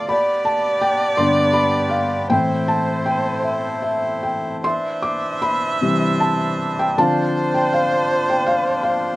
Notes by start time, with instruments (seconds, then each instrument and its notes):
Already playing: felt piano D5 F5 G5 A5, accordion D5
0.09 accordion B3 G4, viola D5, felt piano D5 B5
0.45 felt piano A5
0.82 felt piano G5
1.17 felt piano G2 D3 B3 C6
1.53 felt piano B5
1.90 felt piano F5
2.30 felt piano A2 E3 C4 C5 G5, accordion A3 E4 C5, viola C5
2.68 felt piano A5
3.06 felt piano G5
3.43 felt piano E5
3.82 felt piano E5
4.23 felt piano G5
4.64 accordion E3 D4, felt piano E5 C6, viola E5
5.02 felt piano D6
5.42 felt piano B5
5.81 felt piano C3 E3 G3
6.20 felt piano A5
6.79 felt piano G5
6.97 felt piano D3 F3 C4 F5 A5, accordion F3 C5, viola C5
7.54 felt piano G5
7.73 felt piano F5
8.30 felt piano G5
8.46 felt piano F5
8.83 felt piano F5